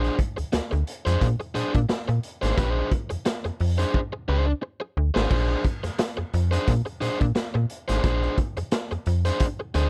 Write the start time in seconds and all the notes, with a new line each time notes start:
Already playing: A#1 D4 G#4 C5
0.04 closed hi-hat
0.19 kick, closed hi-hat
0.37 D2, muted overdriven electric guitar stroke, closed hi-hat
0.52 D2, muted overdriven electric guitar stroke, snare, closed hi-hat
0.71 D2, muted overdriven electric guitar stroke, closed hi-hat
0.87 closed hi-hat
1.05 F2 D4 G#4 C5, closed hi-hat
1.21 A#2, kick, closed hi-hat
1.40 muted overdriven electric guitar stroke, closed hi-hat
1.55 A#2 D4 G#4 C5, closed hi-hat
1.74 A#2, muted overdriven electric guitar stroke, kick, closed hi-hat
1.89 muted overdriven electric guitar stroke, snare, closed hi-hat
2.08 A#2, muted overdriven electric guitar stroke, closed hi-hat
2.23 closed hi-hat
2.42 G#1 D4 G#4 C5, snare, closed hi-hat
2.56 A#1 C#4 G4 B4, kick, closed hi-hat
2.69 D4 G#4 C5
2.91 kick, closed hi-hat
3.10 F2, muted overdriven electric guitar stroke, closed hi-hat
3.25 muted overdriven electric guitar stroke, snare, closed hi-hat
3.45 F2, muted overdriven electric guitar stroke, closed hi-hat
3.60 F2, open hi-hat
3.78 D4 G#4 C5, closed hi-hat
3.94 kick
4.13 muted overdriven electric guitar stroke
4.28 C#2 D4 G#4 C5
4.47 muted overdriven electric guitar stroke
4.62 muted overdriven electric guitar stroke
4.80 muted overdriven electric guitar stroke
4.97 D2
5.14 G#1 D4 G#4 C5, snare
5.29 A#1 D4 G#4 C5, kick, crash
5.64 kick, closed hi-hat
5.83 F2, muted overdriven electric guitar stroke, snare, closed hi-hat
5.99 muted overdriven electric guitar stroke, snare, closed hi-hat
6.17 F2, muted overdriven electric guitar stroke
6.33 F2, closed hi-hat
6.51 D4 G#4 C5, closed hi-hat
6.67 A#2, kick, closed hi-hat
6.86 muted overdriven electric guitar stroke, closed hi-hat
7.01 A#2 D4 G#4 C5, closed hi-hat
7.20 A#2, muted overdriven electric guitar stroke, kick, closed hi-hat
7.35 muted overdriven electric guitar stroke, snare, closed hi-hat
7.54 A#2, muted overdriven electric guitar stroke
7.70 closed hi-hat
7.88 G#1 D4 G#4 C5, snare, closed hi-hat
8.04 A#1 D4 G#4 C5, kick, closed hi-hat
8.23 closed hi-hat
8.38 kick, closed hi-hat
8.57 F2, muted overdriven electric guitar stroke, closed hi-hat
8.71 muted overdriven electric guitar stroke, snare, closed hi-hat
8.91 F2, muted overdriven electric guitar stroke, closed hi-hat
9.06 F2, closed hi-hat
9.25 D4 G#4 C5, closed hi-hat
9.40 kick, closed hi-hat
9.60 muted overdriven electric guitar stroke
9.74 D2 D4 G#4 C5, closed hi-hat